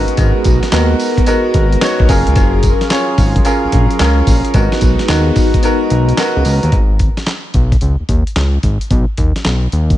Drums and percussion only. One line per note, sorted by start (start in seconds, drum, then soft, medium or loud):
0.08 closed hi-hat medium
0.17 kick loud
0.17 closed hi-hat medium
0.17 tambourine medium
0.17 cowbell medium
0.44 kick loud
0.44 closed hi-hat medium
0.44 tambourine medium
0.63 snare medium
0.63 closed hi-hat medium
0.72 snare loud
0.72 clap loud
0.72 closed hi-hat medium
0.72 tambourine medium
0.72 cowbell medium
1.00 open hi-hat medium
1.00 tambourine medium
1.18 kick medium
1.18 closed hi-hat medium
1.26 closed hi-hat medium
1.26 tambourine medium
1.26 cowbell medium
1.54 kick loud
1.54 closed hi-hat medium
1.72 closed hi-hat medium
1.81 snare loud
1.81 clap medium
1.81 closed hi-hat medium
1.81 tambourine medium
1.81 cowbell medium
2.00 kick loud
2.09 kick loud
2.09 open hi-hat medium
2.09 tambourine medium
2.27 closed hi-hat medium
2.36 kick loud
2.36 closed hi-hat medium
2.36 tambourine medium
2.36 cowbell medium
2.63 kick medium
2.63 closed hi-hat medium
2.63 tambourine medium
2.81 snare medium
2.81 closed hi-hat soft
2.90 snare loud
2.90 clap medium
2.90 closed hi-hat medium
2.90 tambourine medium
2.90 cowbell medium
3.18 kick loud
3.18 open hi-hat medium
3.18 tambourine medium
3.36 kick loud
3.36 closed hi-hat medium
3.45 closed hi-hat medium
3.45 tambourine medium
3.45 cowbell medium
3.72 kick loud
3.72 closed hi-hat medium
3.91 closed hi-hat medium
3.99 snare loud
3.99 clap medium
3.99 closed hi-hat medium
3.99 tambourine medium
3.99 cowbell medium
4.27 kick loud
4.27 open hi-hat medium
4.27 tambourine medium
4.45 closed hi-hat medium
4.54 kick loud
4.54 closed hi-hat medium
4.54 tambourine medium
4.54 cowbell medium
4.72 snare medium
4.81 kick medium
4.81 closed hi-hat medium
4.81 tambourine medium
4.99 snare medium
4.99 closed hi-hat soft
5.08 snare loud
5.08 clap medium
5.08 closed hi-hat medium
5.08 tambourine medium
5.08 cowbell medium
5.36 kick loud
5.36 open hi-hat medium
5.36 tambourine medium
5.54 kick medium
5.54 closed hi-hat medium
5.63 closed hi-hat medium
5.63 tambourine medium
5.63 cowbell medium
5.90 closed hi-hat medium
6.09 closed hi-hat medium
6.17 snare loud
6.17 clap loud
6.17 closed hi-hat medium
6.17 tambourine loud
6.17 cowbell medium
6.45 open hi-hat medium
6.45 tambourine medium
6.63 closed hi-hat medium
6.72 kick loud
6.72 closed hi-hat medium
6.99 kick medium
6.99 closed hi-hat medium
7.17 snare medium
7.17 closed hi-hat soft
7.26 snare loud
7.26 clap medium
7.26 closed hi-hat medium
7.54 kick loud
7.54 closed hi-hat medium
7.72 kick medium
7.72 closed hi-hat medium
7.81 closed hi-hat medium
8.09 kick medium
8.09 closed hi-hat medium
8.27 closed hi-hat medium
8.36 snare loud
8.36 clap medium
8.36 closed hi-hat medium
8.63 kick medium
8.63 closed hi-hat medium
8.81 closed hi-hat medium
8.91 kick loud
8.91 closed hi-hat medium
9.17 kick medium
9.17 closed hi-hat medium
9.36 snare medium
9.36 closed hi-hat soft
9.45 snare loud
9.45 clap medium
9.45 closed hi-hat medium
9.72 closed hi-hat medium
9.90 kick medium
9.90 closed hi-hat soft